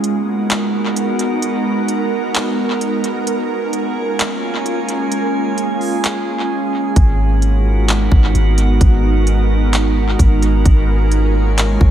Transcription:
0.00 3.23 G#3 medium
0.00 3.23 B3 medium
0.00 3.23 D#4 medium
0.00 3.23 F#4 medium
0.00 3.23 A#4 medium
0.00 5.08 A#4 loud
0.00 3.23 F#5 medium
0.00 closed hi-hat medium
0.50 clap loud
0.50 closed hi-hat medium
0.96 closed hi-hat medium
1.19 closed hi-hat medium
1.42 closed hi-hat medium
1.88 closed hi-hat medium
2.35 clap loud
2.35 closed hi-hat medium
2.81 closed hi-hat medium
3.04 closed hi-hat medium
3.27 6.93 G#3 medium
3.27 6.93 A#3 medium
3.27 6.93 C#4 medium
3.27 6.93 F4 medium
3.27 5.10 A#4 medium
3.27 6.93 G#5 medium
3.27 closed hi-hat medium
3.73 closed hi-hat medium
4.19 clap loud
4.19 closed hi-hat medium
4.66 closed hi-hat medium
4.89 closed hi-hat medium
5.12 6.94 G#4 medium
5.12 closed hi-hat medium
5.58 closed hi-hat medium
5.81 open hi-hat soft
6.04 clap loud
6.04 closed hi-hat medium
6.96 8.08 G#1 loud
6.96 11.91 G#3 medium
6.96 10.62 B3 medium
6.96 10.62 D#4 medium
6.96 10.62 F#4 medium
6.96 11.91 A#4 medium
6.96 10.62 F#5 medium
6.96 kick loud
6.96 closed hi-hat medium
7.42 closed hi-hat medium
7.88 clap loud
7.88 closed hi-hat medium
8.12 8.34 G#1 loud
8.12 kick loud
8.35 8.79 G#1 loud
8.35 closed hi-hat medium
8.58 closed hi-hat medium
8.81 10.15 G#1 loud
8.81 kick loud
8.81 closed hi-hat medium
9.27 closed hi-hat medium
9.73 clap loud
9.73 closed hi-hat medium
10.19 10.64 G#1 loud
10.19 kick medium
10.19 closed hi-hat medium
10.43 closed hi-hat medium
10.65 11.77 G#1 loud
10.65 11.91 A#3 medium
10.65 11.91 C#4 medium
10.65 11.91 F4 medium
10.65 11.91 G#5 medium
10.65 kick loud
10.65 closed hi-hat medium
11.12 closed hi-hat medium
11.58 clap loud
11.58 closed hi-hat medium
11.81 11.91 G#1 loud
11.81 kick loud

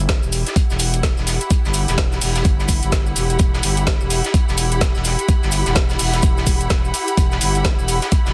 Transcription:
0.00 0.21 G1 loud
0.00 8.33 E4 medium
0.00 8.33 G4 medium
0.09 kick loud
0.09 snare loud
0.09 closed hi-hat medium
0.09 cabasa soft
0.23 0.44 E1 medium
0.23 cabasa soft
0.32 closed hi-hat medium
0.32 open hi-hat medium
0.32 cabasa medium
0.47 snare soft
0.47 closed hi-hat medium
0.47 cabasa soft
0.56 8.33 F#5 medium
0.56 kick loud
0.56 closed hi-hat medium
0.56 cabasa soft
0.70 1.15 E1 medium
0.70 snare soft
0.70 cabasa soft
0.79 closed hi-hat medium
0.79 open hi-hat loud
0.79 cabasa loud
0.94 closed hi-hat medium
0.94 cabasa soft
1.03 kick loud
1.03 snare loud
1.03 closed hi-hat medium
1.03 cabasa medium
1.17 1.39 E1 loud
1.17 snare soft
1.17 cabasa soft
1.24 8.33 B5 medium
1.24 snare medium
1.24 closed hi-hat medium
1.24 open hi-hat medium
1.24 cabasa loud
1.41 closed hi-hat medium
1.41 cabasa soft
1.50 kick loud
1.50 closed hi-hat medium
1.50 cabasa medium
1.65 1.86 G1 loud
1.65 snare soft
1.65 cabasa soft
1.74 closed hi-hat medium
1.74 open hi-hat loud
1.74 cabasa medium
1.88 2.20 E1 loud
1.88 snare medium
1.88 closed hi-hat medium
1.88 cabasa soft
1.98 kick loud
1.98 snare loud
1.98 closed hi-hat medium
1.98 cabasa medium
2.12 snare medium
2.12 cabasa soft
2.21 2.43 E1 medium
2.21 open hi-hat loud
2.21 open hi-hat medium
2.21 cabasa medium
2.35 snare soft
2.35 closed hi-hat medium
2.35 cabasa soft
2.44 2.80 G1 loud
2.44 kick loud
2.44 closed hi-hat medium
2.44 cabasa soft
2.59 snare soft
2.59 cabasa soft
2.68 kick medium
2.68 closed hi-hat medium
2.68 open hi-hat loud
2.68 cabasa loud
2.82 3.14 G1 medium
2.82 closed hi-hat medium
2.82 cabasa soft
2.92 kick loud
2.92 snare loud
2.92 closed hi-hat medium
2.92 cabasa medium
3.06 cabasa soft
3.16 3.38 E1 loud
3.16 closed hi-hat medium
3.16 open hi-hat loud
3.16 cabasa loud
3.30 closed hi-hat medium
3.30 cabasa soft
3.39 3.62 E1 loud
3.39 kick loud
3.39 closed hi-hat medium
3.39 cabasa medium
3.53 snare soft
3.53 cabasa soft
3.63 3.99 G1 medium
3.63 closed hi-hat medium
3.63 open hi-hat loud
3.63 cabasa loud
3.77 closed hi-hat medium
3.77 cabasa soft
3.87 kick loud
3.87 snare loud
3.87 closed hi-hat medium
3.87 cabasa medium
4.01 4.22 E1 loud
4.01 cabasa soft
4.10 closed hi-hat medium
4.10 open hi-hat loud
4.10 cabasa medium
4.24 snare soft
4.24 closed hi-hat soft
4.24 cabasa soft
4.34 kick loud
4.34 closed hi-hat medium
4.34 cabasa medium
4.48 4.93 E1 loud
4.48 snare soft
4.48 cabasa soft
4.58 closed hi-hat medium
4.58 open hi-hat loud
4.58 cabasa medium
4.72 closed hi-hat medium
4.72 cabasa soft
4.81 kick loud
4.81 snare loud
4.81 closed hi-hat medium
4.81 cabasa medium
4.95 5.17 E1 loud
4.95 snare soft
4.95 cabasa soft
5.04 snare soft
5.04 closed hi-hat medium
5.04 open hi-hat loud
5.04 cabasa loud
5.19 closed hi-hat medium
5.19 cabasa soft
5.28 kick loud
5.28 closed hi-hat medium
5.28 cabasa medium
5.43 5.64 G1 medium
5.43 snare soft
5.43 cabasa soft
5.52 closed hi-hat medium
5.52 open hi-hat loud
5.52 cabasa loud
5.66 5.98 E1 loud
5.66 snare medium
5.66 closed hi-hat soft
5.66 cabasa soft
5.75 kick loud
5.75 snare loud
5.75 closed hi-hat medium
5.75 cabasa medium
5.89 snare soft
5.89 cabasa soft
5.99 6.21 E1 medium
5.99 open hi-hat loud
5.99 open hi-hat medium
5.99 cabasa loud
6.13 snare soft
6.13 closed hi-hat medium
6.13 cabasa soft
6.22 6.45 E1 medium
6.22 kick loud
6.22 closed hi-hat medium
6.22 cabasa medium
6.37 snare soft
6.37 cabasa soft
6.47 6.69 E1 medium
6.47 kick medium
6.47 closed hi-hat medium
6.47 open hi-hat loud
6.47 cabasa medium
6.61 closed hi-hat soft
6.61 cabasa soft
6.70 6.92 E1 loud
6.70 kick loud
6.70 snare loud
6.70 closed hi-hat medium
6.70 cabasa soft
6.85 cabasa soft
6.94 closed hi-hat medium
6.94 open hi-hat loud
6.94 cabasa medium
7.07 closed hi-hat medium
7.07 cabasa soft
7.17 7.40 E1 loud
7.17 kick loud
7.17 closed hi-hat medium
7.17 cabasa soft
7.31 snare soft
7.31 cabasa soft
7.41 7.76 G1 medium
7.41 closed hi-hat medium
7.41 open hi-hat loud
7.41 cabasa medium
7.55 closed hi-hat soft
7.55 cabasa soft
7.64 kick loud
7.64 snare loud
7.64 closed hi-hat medium
7.64 cabasa soft
7.79 8.00 E1 medium
7.79 cabasa soft
7.88 closed hi-hat medium
7.88 open hi-hat medium
7.88 cabasa loud
8.02 snare medium
8.02 closed hi-hat medium
8.02 cabasa soft
8.12 kick loud
8.12 closed hi-hat medium
8.12 cabasa soft
8.26 8.33 E1 loud
8.26 snare soft
8.26 cabasa soft

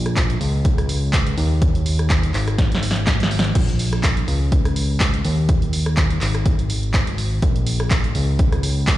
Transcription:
0.00 0.39 A#1 medium
0.06 cross-stick medium
0.06 closed hi-hat soft
0.17 kick medium
0.17 clap loud
0.17 closed hi-hat medium
0.30 closed hi-hat soft
0.41 1.35 C#2 medium
0.41 open hi-hat medium
0.65 kick loud
0.65 closed hi-hat medium
0.78 cross-stick medium
0.78 closed hi-hat soft
0.89 open hi-hat loud
1.13 kick loud
1.13 clap loud
1.13 closed hi-hat medium
1.27 closed hi-hat medium
1.38 2.32 D#2 medium
1.38 open hi-hat medium
1.62 kick loud
1.62 closed hi-hat medium
1.75 closed hi-hat medium
1.86 open hi-hat loud
1.99 cross-stick medium
1.99 closed hi-hat soft
2.10 kick loud
2.10 clap loud
2.10 closed hi-hat medium
2.23 closed hi-hat medium
2.34 3.53 G#1 medium
2.34 clap medium
2.34 open hi-hat medium
2.48 cross-stick medium
2.48 closed hi-hat soft
2.58 kick loud
2.58 snare medium
2.58 closed hi-hat medium
2.72 snare medium
2.72 closed hi-hat medium
2.83 open hi-hat loud
2.91 snare medium
2.96 closed hi-hat soft
3.07 kick loud
3.07 snare medium
3.07 clap loud
3.07 closed hi-hat medium
3.20 snare medium
3.20 closed hi-hat medium
3.31 open hi-hat medium
3.39 snare loud
3.44 closed hi-hat soft
3.55 4.26 A#1 medium
3.55 kick loud
3.55 closed hi-hat medium
3.55 crash medium
3.68 closed hi-hat medium
3.79 open hi-hat loud
3.93 cross-stick medium
3.93 closed hi-hat soft
4.03 kick loud
4.03 clap loud
4.03 closed hi-hat medium
4.17 closed hi-hat medium
4.28 5.23 C#2 medium
4.28 open hi-hat medium
4.52 kick loud
4.52 closed hi-hat medium
4.65 cross-stick medium
4.65 closed hi-hat medium
4.76 open hi-hat loud
5.00 kick loud
5.00 clap loud
5.00 closed hi-hat medium
5.14 closed hi-hat medium
5.25 6.19 D#2 medium
5.25 open hi-hat medium
5.49 kick loud
5.49 closed hi-hat medium
5.62 closed hi-hat medium
5.73 open hi-hat loud
5.86 cross-stick medium
5.86 closed hi-hat soft
5.97 kick loud
5.97 clap loud
5.97 closed hi-hat medium
6.10 closed hi-hat medium
6.21 7.40 G#1 medium
6.21 clap medium
6.21 open hi-hat medium
6.35 cross-stick medium
6.35 closed hi-hat soft
6.46 kick loud
6.46 closed hi-hat medium
6.59 closed hi-hat medium
6.70 open hi-hat loud
6.83 closed hi-hat soft
6.94 kick loud
6.94 clap loud
6.94 closed hi-hat medium
7.07 closed hi-hat medium
7.18 open hi-hat loud
7.42 8.13 A#1 medium
7.42 kick loud
7.42 closed hi-hat medium
7.56 closed hi-hat medium
7.67 open hi-hat loud
7.80 cross-stick medium
7.80 closed hi-hat soft
7.90 kick loud
7.90 clap loud
7.90 closed hi-hat medium
8.04 closed hi-hat soft
8.15 8.98 C#2 medium
8.15 open hi-hat medium
8.39 kick loud
8.39 closed hi-hat medium
8.52 cross-stick medium
8.52 closed hi-hat soft
8.63 open hi-hat loud
8.87 kick loud
8.87 clap loud
8.87 closed hi-hat medium

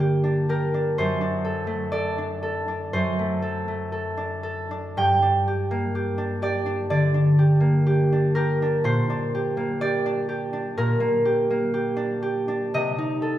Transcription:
0.00 0.97 G2 soft
0.00 1.01 D3 soft
0.00 1.01 A#3 soft
0.00 0.22 D4 soft
0.00 0.48 G4 soft
0.00 1.91 D5 medium
0.00 0.98 G5 medium
0.24 0.73 D4 soft
0.49 1.01 G4 soft
0.49 1.01 A#4 soft
0.74 1.20 D4 soft
0.98 2.92 F#2 soft
0.98 2.92 C5 medium
1.21 2.17 D4 soft
1.45 1.91 A4 soft
1.67 3.18 A3 soft
1.92 2.41 A4 soft
1.92 5.82 D5 medium
2.18 2.67 D4 soft
2.43 3.41 A4 soft
2.68 4.16 D4 soft
2.93 5.02 F#2 soft
2.93 5.02 C5 medium
3.19 3.67 A3 soft
3.42 3.91 A4 soft
3.68 5.02 A3 soft
3.92 4.42 A4 soft
4.17 4.70 D4 soft
4.43 5.01 A4 soft
4.71 5.21 D4 soft
4.97 8.87 G2 soft
4.97 8.88 G5 medium
5.22 6.17 D4 soft
5.48 5.94 G4 soft
5.71 7.59 A#3 soft
5.95 6.41 G4 soft
6.18 6.65 D4 soft
6.42 7.37 G4 soft
6.42 6.89 D5 medium
6.66 7.13 D4 soft
6.90 8.88 D3 soft
6.90 9.80 D5 medium
7.14 8.11 D4 soft
7.39 7.85 G4 soft
7.60 9.56 A#3 soft
7.86 8.35 G4 soft
8.12 8.61 D4 soft
8.35 9.33 G4 soft
8.35 10.76 A#4 medium
8.62 9.08 D4 soft
8.84 10.77 A#2 soft
8.84 10.47 C5 medium
9.10 10.05 D4 soft
9.35 9.81 G4 soft
9.57 10.99 A#3 soft
9.81 10.27 G4 soft
9.81 12.77 D5 medium
10.06 10.52 D4 soft
10.29 11.24 G4 soft
10.53 11.95 D4 soft
10.78 12.78 A#2 soft
10.78 12.77 A#4 medium
11.00 11.49 A#3 soft
11.25 11.73 G4 soft
11.50 12.78 A#3 soft
11.74 12.21 G4 soft
11.96 12.47 D4 soft
12.23 12.77 G4 soft
12.48 12.77 D4 soft
12.74 13.38 C3 soft
12.74 13.38 D#5 medium
12.98 13.38 D#4 soft
13.22 13.38 A4 soft

